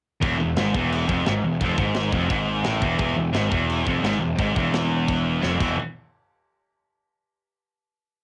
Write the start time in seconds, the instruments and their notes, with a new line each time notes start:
0.21 picked electric bass E1, distorted electric guitar E2, kick, china
0.39 picked electric bass E1, distorted electric guitar E2
0.56 picked electric bass G#1, distorted electric guitar G#2, snare, china
0.74 picked electric bass E1, distorted electric guitar E2, kick
0.92 china
1.08 picked electric bass F1, distorted electric guitar F2, kick
1.25 picked electric bass G#1, distorted electric guitar G#2, snare, china
1.42 picked electric bass E1, distorted electric guitar E2
1.61 picked electric bass F1, distorted electric guitar F2, kick, china
1.78 picked electric bass G#1, distorted electric guitar G#2, kick
1.94 snare, china
2.12 picked electric bass F1, distorted electric guitar F2, kick
2.29 picked electric bass G#1, distorted electric guitar G#2, kick, china
2.63 picked electric bass A1, distorted electric guitar A2, snare, china
2.81 picked electric bass E1, distorted electric guitar E2, kick
2.98 picked electric bass E1, distorted electric guitar E2, kick, china
3.17 picked electric bass E1, distorted electric guitar E2
3.33 picked electric bass G#1, distorted electric guitar G#2, snare, china
3.50 picked electric bass E1, distorted electric guitar E2, kick
3.70 china
3.84 picked electric bass F1, distorted electric guitar F2, kick
4.02 picked electric bass G#1, distorted electric guitar G#2, snare, china
4.19 picked electric bass E1, distorted electric guitar E2
4.36 picked electric bass G#1, distorted electric guitar G#2, kick, china
4.55 picked electric bass E1, distorted electric guitar E2, kick
4.74 snare, china
5.08 kick, china
5.41 picked electric bass F1, distorted electric guitar F2, snare
5.60 picked electric bass E1, distorted electric guitar E2 B2 E3, kick, crash